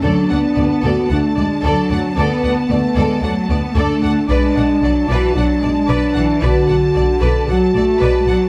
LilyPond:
<<
  \new Staff \with { instrumentName = "Violin section" } { \time 4/4 \key d \lydian \tempo 4 = 113 a''1~ | a''1 | a''1~ | a''1 | }
  \new Staff \with { instrumentName = "Viola section" } { \time 4/4 \key d \lydian d''8 d''8 d''8 d''8 d''8 d''8 d''8 d''8 | d''8 d''8 d''8 d''8 d''8 d''8 d''8 d''8 | d''8 d''8 d''8 d''8 d''8 d''8 d''8 d''8 | d''8 d''8 d''8 d''8 d''8 d''8 d''8 d''8 | }
  \new Staff \with { instrumentName = "Violin section" } { \time 4/4 \key d \lydian a'8 fis''8 d''8 a'8 fis''8 d''8 a'8 fis''8 | a'8 fis''8 d''8 a'8 fis''8 d''8 a'8 fis''8 | b'8 fis''8 d''8 b'8 fis''8 d''8 b'8 fis''8 | b'8 fis''8 d''8 b'8 fis''8 d''8 b'8 fis''8 | }
  \new Staff \with { instrumentName = "French horn section" } { \time 4/4 \key d \lydian d'4. fis'8 d'2 | b2 a4 d'4 | d'4. fis'8 d'2 | fis'4. a'8 fis'2 | }
  \new Staff \with { instrumentName = "Cello section" } { \clef bass \time 4/4 \key d \lydian fis8 b4. a8 gis8 fis4 | b4 a8 gis8 fis8 b8 a4 | gis4 fis8 e8 fis8 gis8 fis8 e8 | d2 fis8 a8 gis8 fis8 | }
  \new Staff \with { instrumentName = "Double bass section" } { \clef bass \time 4/4 \key d \lydian d,8 d,8 d,8 d,8 d,8 d,8 d,8 d,8 | d,8 d,8 d,8 d,8 d,8 d,8 d,8 d,8 | b,,8 b,,8 b,,8 b,,8 b,,8 b,,8 b,,8 b,,8 | b,,8 b,,8 b,,8 b,,8 b,,8 b,,8 b,,8 b,,8 | }
>>